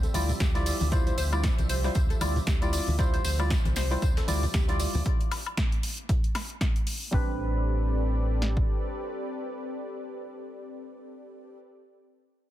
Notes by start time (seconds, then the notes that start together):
Already playing: F3 C4 G4 D5 E5
0.03 A4, closed hi-hat, tambourine
0.14 D2 G3 E4 F4 D5, closed hi-hat, open hi-hat, tambourine, high conga
0.29 closed hi-hat, tambourine, low conga
0.40 D2 G4, kick, snare, closed hi-hat, tambourine
0.54 G3 E4 F4 D5, snare, closed hi-hat, tambourine
0.66 D5, closed hi-hat, open hi-hat, tambourine
0.81 D2, tambourine, high conga, low conga
0.91 G3 E4 F4 C5 D5, kick, closed hi-hat, tambourine
1.07 C5, closed hi-hat, tambourine
1.18 D2 C5, closed hi-hat, open hi-hat, tambourine
1.32 G3 E4 F4 D5, tambourine, high woodblock
1.44 kick, snare, closed hi-hat, tambourine
1.58 C2, closed hi-hat, tambourine, high conga
1.69 C5, closed hi-hat, open hi-hat, tambourine
1.84 G3 E4 F4 C5 D5, snare, tambourine
1.95 D2 C5, kick, closed hi-hat, tambourine
2.10 A4, closed hi-hat, tambourine
2.21 D2 G3 E4 F4 D5, snare, closed hi-hat, open hi-hat, tambourine, high conga, high woodblock
2.36 closed hi-hat, tambourine, low conga
2.47 D2 G4, kick, snare, closed hi-hat, tambourine
2.61 G3 E4 F4 D5, closed hi-hat, tambourine
2.73 D5, closed hi-hat, open hi-hat, tambourine
2.88 D2, tambourine, high conga, low conga
2.98 G3 E4 F4 C5 D5, kick, closed hi-hat, tambourine
3.14 C5, closed hi-hat, tambourine
3.24 D2 C5, open hi-hat, tambourine
3.39 G3 E4 F4 D5, tambourine, high woodblock
3.50 kick, snare, closed hi-hat, tambourine
3.65 C2, closed hi-hat, tambourine, high conga
3.76 C5, snare, closed hi-hat, open hi-hat, tambourine
3.91 G3 E4 F4 C5 D5, tambourine
4.02 D2 C5, kick, closed hi-hat, tambourine
4.17 A4, snare, closed hi-hat, tambourine
4.27 D2 G3 E4 F4 D5, open hi-hat, tambourine, high conga
4.43 closed hi-hat, tambourine, low conga
4.54 D2 G4, kick, snare, closed hi-hat, tambourine
4.68 G3 E4 F4 D5, snare, closed hi-hat, tambourine
4.79 D5, closed hi-hat, open hi-hat, tambourine
4.95 D2, tambourine, high conga, low conga
5.06 kick, closed hi-hat
5.21 closed hi-hat
5.32 snare, closed hi-hat, open hi-hat, high woodblock
5.46 closed hi-hat, high woodblock
5.57 kick, snare, closed hi-hat
5.72 closed hi-hat
5.83 closed hi-hat, open hi-hat
5.98 closed hi-hat
6.09 kick, closed hi-hat
6.24 closed hi-hat
6.35 snare, closed hi-hat, open hi-hat, high woodblock
6.50 closed hi-hat
6.61 kick, snare, closed hi-hat
6.76 closed hi-hat
6.87 closed hi-hat, open hi-hat
7.11 A1 G3 C4 D4 G4 A4 B4 D5, kick
8.42 snare
8.57 kick